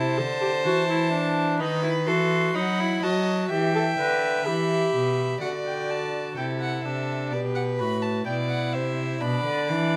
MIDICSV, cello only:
0, 0, Header, 1, 2, 480
1, 0, Start_track
1, 0, Tempo, 950872
1, 807, Time_signature, 4, 2, 24, 8
1, 5031, End_track
2, 0, Start_track
2, 0, Title_t, "Cello"
2, 0, Program_c, 0, 42
2, 0, Note_on_c, 0, 48, 79
2, 93, Note_on_c, 0, 50, 71
2, 101, Note_off_c, 0, 48, 0
2, 328, Note_on_c, 0, 52, 73
2, 335, Note_off_c, 0, 50, 0
2, 808, Note_on_c, 0, 51, 77
2, 815, Note_off_c, 0, 52, 0
2, 1046, Note_on_c, 0, 52, 74
2, 1054, Note_off_c, 0, 51, 0
2, 1285, Note_off_c, 0, 52, 0
2, 1288, Note_on_c, 0, 54, 69
2, 1525, Note_off_c, 0, 54, 0
2, 1531, Note_on_c, 0, 54, 73
2, 1767, Note_off_c, 0, 54, 0
2, 1772, Note_on_c, 0, 52, 80
2, 2009, Note_off_c, 0, 52, 0
2, 2013, Note_on_c, 0, 50, 69
2, 2250, Note_off_c, 0, 50, 0
2, 2255, Note_on_c, 0, 52, 74
2, 2492, Note_off_c, 0, 52, 0
2, 2498, Note_on_c, 0, 47, 65
2, 2733, Note_off_c, 0, 47, 0
2, 2739, Note_on_c, 0, 50, 60
2, 3198, Note_off_c, 0, 50, 0
2, 3216, Note_on_c, 0, 48, 59
2, 3453, Note_off_c, 0, 48, 0
2, 3457, Note_on_c, 0, 48, 56
2, 3697, Note_on_c, 0, 47, 62
2, 3705, Note_off_c, 0, 48, 0
2, 3939, Note_on_c, 0, 45, 61
2, 3947, Note_off_c, 0, 47, 0
2, 4171, Note_off_c, 0, 45, 0
2, 4174, Note_on_c, 0, 47, 65
2, 4412, Note_on_c, 0, 48, 65
2, 4420, Note_off_c, 0, 47, 0
2, 4650, Note_off_c, 0, 48, 0
2, 4653, Note_on_c, 0, 47, 73
2, 4768, Note_off_c, 0, 47, 0
2, 4771, Note_on_c, 0, 50, 72
2, 4893, Note_on_c, 0, 52, 82
2, 4901, Note_off_c, 0, 50, 0
2, 5031, Note_off_c, 0, 52, 0
2, 5031, End_track
0, 0, End_of_file